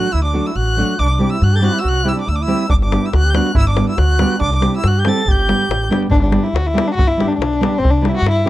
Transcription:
Already playing: F#4 F#6
0.12 D2 E4 E6
0.23 D4 D6
0.33 F#3 A3 D4 F#4
0.47 E4 E6
0.55 A1 F#4 F#6
0.77 F#3 A3 D4 F#4
0.99 C2 D4 D6
1.09 D4 D6
1.19 G3 C4 E4 G4
1.30 E4 E6
1.42 G2 F#4 F#6
1.53 G4 A4 G6 A6
1.60 G3 C4 E4 F#4 G4 G6
1.66 F#6
1.73 E4
1.79 F#4 E6
1.84 C2
1.89 F#6
2.04 G3 C4 E4 G4
2.09 E6
2.15 D4
2.21 D6
2.27 D2 E4 E6
2.32 D4 D6
2.41 E4 E6
2.47 G3 C4 E4 G4
2.68 G1 D4 D6, davul low
2.82 D4 D6, davul high
2.92 G3 B3 D4 G4, davul high
3.03 E4 E6
3.12 D2 F#4, davul high
3.17 F#6
3.25 G4
3.30 G3 B3 F#4 G6
3.35 D4 G4 F#6, davul high
3.47 davul high
3.54 G1 E4 E6, davul low
3.67 D4 D6, davul high
3.76 G3 B3 D4 G4, davul high
3.88 E4 E6
3.97 D2 F#4 F#6, davul high
4.19 G3 B3 D4 G4, davul high
4.33 davul high
4.39 C2 D4 D6, davul low
4.52 D4, davul high
4.57 D6
4.61 G3 C4 E4 G4, davul high
4.76 E4 E6
4.84 G2 F#4 F#6, davul high
4.98 G4 G6
5.05 G3 C4 E4 G4 A4, davul high
5.09 A6
5.18 davul high
5.26 G1 G4, davul low
5.32 G6
5.39 davul high
5.48 G3 B3 D4 G4, davul high
5.62 davul high
5.68 A1, davul high
5.84 davul high
5.89 G1 G3 B3 D4 G4, davul high
6.03 davul high
6.10 G1 D4, davul low
6.22 D4, davul high
6.31 G3 B3 D4 G4, davul high
6.44 E4, davul high
6.53 D2 F#4, davul high
6.67 E4, davul high
6.74 G3 B3 D4 G4
6.78 davul high
6.88 D4
6.95 G1 F#4
6.99 davul low
7.08 E4
7.17 G3 B3 D4 G4, davul high
7.28 D4
7.32 davul high
7.38 B1 D4, davul high
7.53 davul high
7.61 G3 B3 D4 G4, davul high
7.78 C2 C4
7.85 davul low
7.91 D4
7.97 G3, davul high
8.02 C4 E4 G4, davul high
8.09 E4
8.17 F#4, davul high
8.22 G2
8.26 davul high
8.31 E4
8.39 davul high
8.44 G3 C4 E4 G4

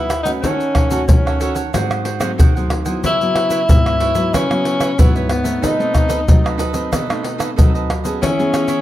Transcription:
Already playing: E4 G#4 B4 F#5
0.10 pandeiro, tamborim, shaker
0.23 A3 C#4 D#4 F#4 B4 F#5, pandeiro, shaker
0.27 G#4
0.42 D#3 C#4 D#4 A4, pandeiro, shaker, surdo
0.46 C#5 F#5
0.60 pandeiro, shaker
0.75 D#4 A4 C#5 F#5, pandeiro, tamborim, surdo
0.91 A3 C#4 D#4 F#4 A4 C#5 F#5, pandeiro, shaker
1.08 D#3 C#4, pandeiro, shaker, surdo
1.26 A4 C#5 F#5, pandeiro, tamborim, shaker
1.40 A3 C#4 D#4 F#4 A4 C#5 F#5, pandeiro, shaker
1.54 A4 C#5 F#5, pandeiro, shaker
1.73 G#2 F#3 A3 C4 F#4 G#4 C5 F#5, pandeiro, tamborim, shaker, surdo
1.91 pandeiro, tamborim, shaker
2.04 F#4 G#4 C5 F#5, pandeiro
2.20 F#3 A3 C4 F#4 G#4 C5 F#5, pandeiro, tamborim, shaker
2.38 D#3 F#4 G#4 C5 F#5, pandeiro, shaker, surdo
2.55 F#3 A3 C4 G#4 C5 F#5, pandeiro, shaker
2.70 pandeiro, tamborim
2.85 F#3 B3 E4 G#4 C5 F#5, pandeiro, shaker
3.04 C#3 E4 B4 C#5 E5, pandeiro, shaker, surdo
3.21 F#3 B3 E4, pandeiro, shaker
3.35 E4 B4 C#5 E5, pandeiro, tamborim
3.50 E4 B4 C#5 E5, pandeiro, shaker
3.68 G#2 F#3 B3 E4, pandeiro, shaker, surdo
3.86 B4 C#5 E5, pandeiro, tamborim, shaker
4.00 E4 B4 C#5 E5, pandeiro
4.15 F#3 B3 E4 B4 C#5 E5, pandeiro, shaker
4.34 C#3 C#4 E4 B4 C#5 E5, pandeiro, tamborim, shaker, surdo
4.50 F#3 B3 E4, pandeiro, tamborim, shaker
4.65 E4 B4 C#5 E5, pandeiro
4.80 E4 B4 C#5 E5, pandeiro, tamborim, shaker
4.98 G#2 F#3 B3 E4 B4 C#5 E5, pandeiro, shaker, surdo
5.16 B4 C#5 E5, pandeiro, shaker
5.29 B3, pandeiro, tamborim
5.44 A3 C4 D#4 B4 C#5 E5, pandeiro, shaker
5.61 B2 D#4 A4 B4 D#5, pandeiro, shaker, surdo
5.79 A3 C4 D#4, pandeiro, shaker
5.94 D#4 A4 B4 D#5, pandeiro, tamborim, shaker, surdo
6.08 D#4 A4 B4 D#5, pandeiro, shaker
6.28 F#3 A3 C4 D#4, pandeiro, shaker, surdo
6.44 A4 B4 D#5, pandeiro, tamborim, shaker
6.58 D#4 A4 B4 D#5, pandeiro, shaker
6.73 A3 C4 D#4 A4 B4 D#5, pandeiro, shaker
6.92 B2 D#4 A4 B4 D#5, pandeiro, tamborim, shaker, surdo
7.10 A3 C4 D#4, pandeiro, tamborim, shaker
7.23 D#4 A4 B4 D#5, pandeiro
7.38 D#4 A4 B4 D#5, pandeiro, tamborim, shaker
7.56 F#3 A3 C4 D#4 A4 B4 D#5, pandeiro, shaker, surdo
7.74 A4 B4 D#5, pandeiro, shaker
7.90 pandeiro, tamborim
8.04 B3 C#4 G#4 A4 B4 D#5, pandeiro, shaker
8.21 E3 C#4 E4 G#4 C#5 E5, pandeiro, shaker, surdo
8.39 B3 C#4 G#4, pandeiro, shaker
8.53 E4 G#4 C#5 E5, pandeiro, tamborim, shaker
8.68 E4 G#4 C#5 E5, pandeiro, shaker

